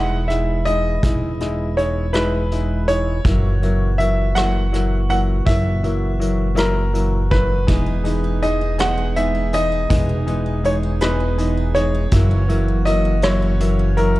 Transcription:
Already playing: E1 E3 G#3 D#4 E4 F#5
0.28 G#3 D#4 E4 E5, cross-stick, closed hi-hat
0.65 G#3 D#4 E4 D#5, closed hi-hat
1.03 E1 G#3 D#4 E4, kick, closed hi-hat
1.40 G#3 D#4 E4, cross-stick, closed hi-hat
1.77 G#3 D#4 E4 C#5, closed hi-hat
2.13 G#3 D#4 E4 B4, cross-stick, closed hi-hat
2.51 G#3 D#4 E4, closed hi-hat
2.88 G#3 D#4 E4 C#5, closed hi-hat
3.25 F#1 A#2 E3 F#3 A#3 E4 F#4, kick, closed hi-hat
3.62 F#3 A#3 E4, closed hi-hat
3.98 F#3 A#3 E4 E5, closed hi-hat
4.35 F#3 A#3 E4 F#5, cross-stick, closed hi-hat
4.72 F#3 A#3 E4, cross-stick, closed hi-hat
5.09 F#3 A#3 E4 F#5, closed hi-hat
5.45 F#1 F#3 A#3 E4 E5, kick, closed hi-hat
5.83 F#3 A#3 E4, closed hi-hat
6.19 F#3 A#3 E4, closed hi-hat
6.55 F#3 A#3 E4 A#4, cross-stick, closed hi-hat
6.93 F#3 A#3 E4, closed hi-hat
7.31 F#3 A#3 E4 B4, kick, closed hi-hat
7.67 E1 E3 G#3 B3 D#4 G#4, kick, closed hi-hat
7.86 D#4
8.04 E3 G#3 B3 D#4, closed hi-hat
8.24 D#4
8.42 E3 G#3 D#4 G#4 D#5, closed hi-hat
8.61 D#4
8.78 E3 G#3 B3 D#4 G#4 F#5, cross-stick, closed hi-hat
8.98 D#4
9.16 E3 G#3 B3 D#4 E5, closed hi-hat
9.35 D#4
9.53 E3 G#3 D#4 G#4 D#5, closed hi-hat
9.72 D#4
9.90 E1 E3 G#3 B3 D#4 G#4, kick, closed hi-hat
10.09 D#4
10.26 E3 G#3 B3 D#4, closed hi-hat
10.46 D#4
10.64 E3 G#3 D#4 G#4 C#5, closed hi-hat
10.83 D#4
11.00 E3 G#3 B3 D#4 G#4 B4, cross-stick, closed hi-hat
11.20 D#4
11.38 E3 G#3 B3 D#4, closed hi-hat
11.57 D#4
11.75 E3 G#3 D#4 G#4 C#5, closed hi-hat
11.95 D#4
12.11 F#1 E3 F#3 A#3 E4 F#4, kick, closed hi-hat
12.31 C#4
12.48 F#3 A#3 E4, closed hi-hat
12.68 C#4
12.85 F#3 A#3 E4 F#4 D#5, closed hi-hat
13.05 C#4
13.22 E3 F#3 A#3 E4 F#4 C#5, cross-stick, closed hi-hat
13.42 C#4
13.60 F#3 A#3 E4, closed hi-hat
13.79 C#4
13.97 F#3 A#3 E4 F#4 A#4, closed hi-hat
14.16 C#4

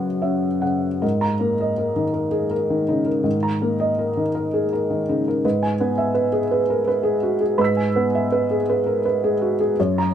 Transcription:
Already playing: F#2 C#3 C#4 B4 C#5 F#5
0.22 C#4 E5
0.62 C#3 F#5
1.02 G#2 A#4
1.21 A#5
1.40 A#3 A#4
1.61 D#5
1.78 A#4
1.96 D#3
2.14 A#4
2.31 G#4
2.51 A#4
2.70 D#3
2.88 C#3 D#4
3.06 A#4
3.24 G#2 D#3
3.43 A#5
3.62 A#3 A#4
3.80 D#5
3.99 A#4
4.17 D#3
4.35 A#4
4.54 G#4
4.73 A#4
4.90 D#3
5.09 C#3 D#4
5.28 A#4
5.45 G#2 B4
5.63 G#5
5.80 B3 B4
5.98 E5
6.14 B4
6.32 G#4
6.51 B4
6.70 A#4
6.88 B4
7.03 G#4
7.23 F#4
7.41 G#4
7.58 G#2 B4 B5 E6
7.64 B6
7.77 G#5
7.96 B3 B4
8.15 E5
8.32 B4
8.51 G#4
8.70 B4
8.86 A#4
9.05 B4
9.24 G#4
9.41 F#4
9.60 G#4
9.80 F#2 C#5
9.98 A#5

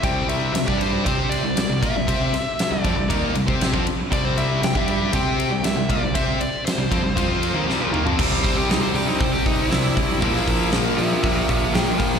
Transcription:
0.02 C2 C3 G3 C4 G5, kick, ride
0.29 E5, ride
0.54 C2 C3 G3 E5, snare, ride
0.67 G2 G3 D4 G4 D5, kick
0.78 C5, ride
1.05 C3 C4 G4 C5, kick, ride
1.30 D5, ride
1.43 C2 C3 G3
1.56 C2 C3 G3, snare, ride
1.69 C2 C3 G3
1.82 A#2 A#3 F4 E5, kick, ride
1.95 C2 C3 G3
2.08 C3 C4 G4 C5, kick, ride
2.33 muted distorted electric guitar stroke, muted picked electric bass stroke, muted overdriven electric guitar stroke, snare, ride
2.59 snare, ride
2.71 C2 C3 G3
2.81 F2 F3 C4 D5, kick, ride
2.96 C2 C3 G3
3.09 D#2 D#3 A#3 D#4, kick, ride
3.35 C2 C3 G3, ride
3.47 C3 C4 G4 C5, kick
3.61 snare, ride
3.73 F2 F3 C4, kick
3.87 ride
4.11 C2 C3 G3 C4 D5, kick, ride
4.25 C5
4.38 E5, ride
4.62 C2 C3 G3 G5, snare, ride
4.74 G2 G3 D4 G4 E5, kick
4.88 E5, ride
5.12 C3 C4 G4 C5 G5, kick, ride
5.40 ride
5.51 C2 C3 G3
5.63 C2 C3 G3 E5, snare, ride
5.76 C2 C3 G3
5.89 A#2 A#3 F4 D5, kick, ride
6.01 C2 C3 G3
6.14 C3 C4 G4 C5 E5, kick, ride
6.40 D5, muted overdriven electric guitar stroke, muted distorted electric guitar stroke, muted picked electric bass stroke, ride
6.66 C5, snare, ride
6.78 C2 C3 G3
6.91 F2 F3 C4, kick, ride
7.02 C2 C3 G3
7.15 F2 F3 C4 F4, kick, ride
7.43 ride
7.53 D#2 D#3 A#3
7.66 C2 C3 G3, snare
7.79 A#1 A#2 F3
7.92 D#2 D#3 A#3, mid tom
8.04 F2 F3 C4, floor tom
8.18 C2 C3 G3 C4, kick, crash
8.43 C2 C5, kick, open hi-hat
8.56 G4
8.68 C2 D#4, snare, open hi-hat
8.81 C5
8.94 C2 C3 G3 C4 G4, open hi-hat
9.07 D#4
9.18 C2 C5, kick, open hi-hat
9.32 G4
9.46 C2 D#4, kick, open hi-hat
9.71 C2 E4, snare, open hi-hat
9.86 snare
9.96 C2 C3 G3 C4, kick, open hi-hat
10.21 A#1 A#2 F3 A#3, kick, open hi-hat
10.36 snare
10.47 A#1, kick, open hi-hat
10.72 A#1, snare, open hi-hat
10.97 A#1 A#2 F3 A#3 G4 E5, open hi-hat
11.23 A#1 G4 E5, kick, open hi-hat
11.49 A#1 G4 E5, kick, open hi-hat
11.74 A#1 A#4 G5, snare, open hi-hat
11.98 A#1 A#2 F3 A#3 A#4 G5, kick, open hi-hat

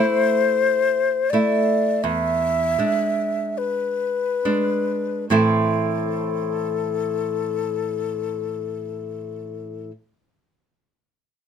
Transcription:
Already playing: A3 E4 C5
1.30 A3 E4 D5
2.03 E2 E5
2.78 G#3 D4
3.58 B4
4.45 G#3 D4
5.30 A2 E3 C4 E4 A4 C5

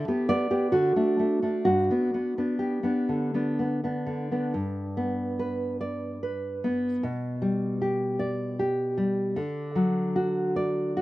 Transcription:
Already playing: A4
0.08 B3 G4
0.29 B3 D5
0.51 B3 G4
0.72 D3 F#4
0.96 A3 D4
1.20 A3
1.42 A3 D4
1.65 G2 F#4
1.91 B3 D4
2.14 B3
2.38 B3 D4
2.59 G4
2.83 B3 D4
3.09 D3
3.34 B3 D4
3.59 B3
3.84 B3 D4
4.06 D3
4.32 B3 D4
4.54 G2
4.97 B3
5.39 B4
5.81 D5
6.23 B4
6.64 B3
7.03 B2
7.42 G3
7.82 G4
8.19 D5
8.59 G4
8.98 G3
9.36 D3
9.75 F#3
10.16 F#4
10.56 D5
10.97 F#4

